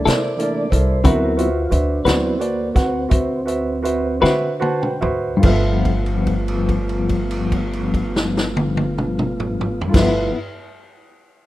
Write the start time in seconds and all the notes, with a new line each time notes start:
0.05 C3 A#3 E4 A4 A#4 C5 D5, snare, closed hi-hat
0.36 E3 A3 A#3 D4 E4 A4 A#4, closed hi-hat
0.41 D5
0.71 C2 E4 A4 A#4 C5 D5, kick, closed hi-hat
1.04 D2 D3 F#3 B3 C4 E4 F#4 A#4 B4 C5 E5, kick, closed hi-hat
1.37 F4 F#4 B4 C5 E5, closed hi-hat
1.70 D2 D4 F#4 B4 C5 E5, closed hi-hat
2.05 D2 D3 F#3 B3 C4 E4 F#4 B4 C5 D5, snare, closed hi-hat
2.39 A#3 F#4 B4 C5 D5, closed hi-hat
2.75 D2 C4 F#4 B4 C5 F#5, kick, snare, closed hi-hat
3.09 D2 F#4 B4 C5 E5, kick, closed hi-hat
3.45 F#4 B4 C5 E5, closed hi-hat
3.83 F#4 B4 C5 E5, closed hi-hat
4.20 D3 C4 F#4 B4 C5 E5, snare
4.60 F#4 B4 C5 F#5 A5, high tom
4.82 G5, mid tom
5.01 D2 F#4 B4 C5 E5, mid tom
5.37 G2 F4
5.42 G1 F3 A4 B4, kick, crash
5.46 A3 B3 F4 E5
5.52 B3
5.85 kick, crash
6.06 crash
6.27 kick, crash
6.48 crash
6.69 kick, crash
6.89 crash
7.09 kick, crash
7.31 crash
7.52 kick, crash
7.73 crash
7.94 kick, crash
8.16 snare
8.37 snare
8.57 high tom
8.77 high tom
8.98 mid tom
9.19 mid tom
9.40 mid tom
9.61 mid tom
9.81 floor tom
9.88 G2 F4
9.92 G1 A3 B3 E4 F4 A4 B4, kick, snare, crash
9.96 F3 E5
10.03 B3
10.08 E4